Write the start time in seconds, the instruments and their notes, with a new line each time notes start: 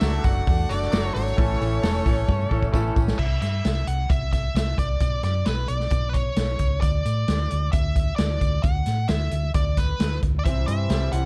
Already playing: tonewheel organ A4 D5 F#5 D6, lead electric guitar E5
0.01 fingered electric bass C#2, steel-string acoustic guitar F#3 A3 D4 F#4 A4, snare, open hi-hat, tambourine
0.24 fingered electric bass F#1, clean electric guitar A3, steel-string acoustic guitar F#4 A4, lead electric guitar F#5, kick, open hi-hat, tambourine
0.28 steel-string acoustic guitar D4
0.35 tambourine
0.47 fingered electric bass E2, steel-string acoustic guitar A3 D4 F#4 A4, kick, open hi-hat, tambourine
0.69 fingered electric bass F#1, clean electric guitar A3, steel-string acoustic guitar F#4 A4, lead electric guitar D5, open hi-hat, tambourine
0.73 steel-string acoustic guitar D4
0.82 snare, tambourine
0.92 fingered electric bass F#1, steel-string acoustic guitar F#3 A3 D4 F#4 A4, snare, open hi-hat, tambourine
1.14 fingered electric bass G#1, steel-string acoustic guitar D4 F#4 A4, lead electric guitar C#5, open hi-hat, tambourine
1.28 tambourine
1.37 fingered electric bass A1, steel-string acoustic guitar A2 E3 A3 C#4 E4 A4, tonewheel organ C#5 E5 C#6, kick, open hi-hat, tambourine
1.61 fingered electric bass A1, steel-string acoustic guitar A3 C#4 E4 A4, open hi-hat
1.73 tambourine
1.83 fingered electric bass E1, steel-string acoustic guitar A2 E3 A3 C#4 E4 A4, snare, open hi-hat, tambourine
1.96 tambourine
2.05 fingered electric bass A1, steel-string acoustic guitar A3 C#4 E4 A4, kick, open hi-hat, tambourine
2.27 fingered electric bass G2, steel-string acoustic guitar A3 C#4 E4 A4, kick, tambourine
2.41 tambourine
2.51 fingered electric bass A1, steel-string acoustic guitar A3 C#4 E4 A4, kick, tambourine
2.63 kick, tambourine
2.73 fingered electric bass A1, steel-string acoustic guitar A2 E3 A3 C#4 E4 A4, kick, tambourine
2.95 fingered electric bass A1, steel-string acoustic guitar A3 C#4 E4 A4, kick, tambourine
3.08 snare, tambourine
3.19 fingered electric bass C2, lead electric guitar E5, kick, crash
3.42 fingered electric bass G2, lead electric guitar E5, snare, closed hi-hat
3.65 fingered electric bass C2, snare, closed hi-hat
3.87 fingered electric bass C2, lead electric guitar F#5, closed hi-hat
4.09 fingered electric bass C2, lead electric guitar E5, kick, closed hi-hat
4.33 lead electric guitar E5, kick, snare, closed hi-hat
4.54 fingered electric bass C2, lead electric guitar E5, snare, closed hi-hat
4.78 fingered electric bass C2, lead electric guitar D5, kick, closed hi-hat
5.00 fingered electric bass B1, kick, closed hi-hat
5.23 fingered electric bass F#2, lead electric guitar D5, snare, closed hi-hat
5.46 fingered electric bass B1, lead electric guitar B4, snare, closed hi-hat
5.68 fingered electric bass B1, lead electric guitar D5, closed hi-hat
5.80 snare
5.90 fingered electric bass B1, kick, closed hi-hat
6.09 lead electric guitar B4
6.13 lead electric guitar C#5, kick, closed hi-hat
6.36 fingered electric bass B1, snare, closed hi-hat
6.59 fingered electric bass C#2, kick, closed hi-hat
6.81 fingered electric bass D2, lead electric guitar D5, kick, closed hi-hat
7.05 fingered electric bass A2, closed hi-hat
7.28 fingered electric bass D2, snare, closed hi-hat
7.50 fingered electric bass D2, closed hi-hat
7.72 fingered electric bass D2, lead electric guitar E5, kick, closed hi-hat
7.96 kick, closed hi-hat
8.16 fingered electric bass D2, lead electric guitar D5, snare, closed hi-hat
8.41 fingered electric bass D2, kick, closed hi-hat
8.62 fingered electric bass D2, lead electric guitar F#5, kick, closed hi-hat
8.86 fingered electric bass A2, snare, closed hi-hat
9.08 fingered electric bass D2, lead electric guitar E5, snare, closed hi-hat
9.31 fingered electric bass D2, closed hi-hat
9.54 fingered electric bass D2, lead electric guitar D5, kick, closed hi-hat
9.77 lead electric guitar B4, kick, snare, closed hi-hat
10.00 fingered electric bass D2, snare, closed hi-hat
10.22 fingered electric bass D2, kick, closed hi-hat
10.39 lead electric guitar D5
10.44 fingered electric bass C2, steel-string acoustic guitar C3 E3 G3 C4 E4 C5, tonewheel organ G4 C5 E5 C6, lead electric guitar E5, kick, closed hi-hat
10.67 fingered electric bass G2, clean electric guitar E3, steel-string acoustic guitar G3 C4 E4 C5, lead electric guitar E5, closed hi-hat
10.90 fingered electric bass C2, steel-string acoustic guitar G3 C4 E4 C5, snare, closed hi-hat
11.12 fingered electric bass C2, clean electric guitar E3, steel-string acoustic guitar G3 C4 E4 C5, lead electric guitar F#5, closed hi-hat